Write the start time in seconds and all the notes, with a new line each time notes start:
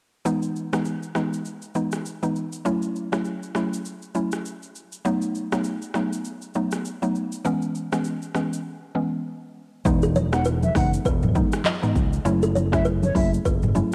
0.25 E3 G#3 B3 D#4, shaker
0.42 shaker
0.56 shaker
0.73 E3 G#3 B3 D#4, cross-stick, shaker
0.85 shaker
1.03 shaker
1.15 E3 G#3 B3 D#4, cross-stick, shaker
1.33 shaker
1.45 shaker
1.62 shaker
1.75 E3 G#3 B3 D#4, shaker
1.92 cross-stick, shaker
2.06 shaker
2.23 E3 G#3 B3 D#4, shaker
2.36 shaker
2.53 shaker
2.65 F#3 A3 C#4 E4, shaker
2.82 shaker
2.96 shaker
3.12 F#3 A3 C#4 E4, cross-stick, shaker
3.25 shaker
3.43 shaker
3.55 F#3 A3 C#4 E4, cross-stick, shaker
3.74 shaker
3.85 shaker
4.02 shaker
4.15 F#3 A3 C#4 E4, shaker
4.32 cross-stick, shaker
4.45 shaker
4.63 shaker
4.75 shaker
4.92 shaker
5.05 F#3 A3 B3 D#4, shaker
5.22 shaker
5.35 shaker
5.52 F#3 A3 B3 D#4, cross-stick, shaker
5.64 shaker
5.82 shaker
5.94 F#3 A3 B3 D#4, cross-stick, shaker
6.13 shaker
6.25 shaker
6.42 shaker
6.54 F#3 A3 B3 D#4, shaker
6.71 cross-stick, shaker
6.85 shaker
7.02 F#3 A3 B3 D#4, shaker
7.15 shaker
7.32 shaker
7.45 E3 G#3 B3 C#4, shaker
7.62 shaker
7.75 shaker
7.92 E3 G#3 B3 C#4, cross-stick, shaker
8.04 shaker
8.22 shaker
8.35 E3 G#3 B3 C#4, cross-stick, shaker
8.53 shaker
8.95 E3 G#3 B3 C#4
9.85 E1 E3 G#3 B3 D#4, kick, shaker
10.02 G#4, shaker
10.16 C#5, high conga, shaker
10.32 E3 G#3 B3 D#4 F#5, cross-stick, shaker
10.45 B4, shaker
10.63 E5, high conga, shaker
10.75 F#1 E3 G#3 B3 D#4 F#5, kick, cross-stick, open hi-hat, low conga, shaker
10.94 shaker
11.05 E1 B4, kick, shaker
11.22 mid tom, high conga, shaker
11.35 E3 G#3 B3 D#4, kick, high conga, shaker
11.52 cross-stick, shaker
11.64 D#5, clap, high conga, shaker
11.82 E3 G#3 B3 D#4, mid tom, shaker
11.95 C#2, kick, high conga, low conga, shaker
12.13 shaker
12.25 F#1 F#3 A3 C#4 E4, shaker
12.42 A4, shaker
12.55 C#5, high conga, shaker
12.72 F#3 A3 C#4 E4 E5, kick, cross-stick, shaker
12.85 B4, shaker
13.03 C#5, high conga, shaker
13.15 F#1 F#3 A3 C#4 E4 E5, kick, open hi-hat, low conga, shaker
13.34 shaker
13.45 F#1 B4, kick, shaker
13.63 mid tom, high conga, shaker
13.75 F#3 A3 C#4 E4, high conga, shaker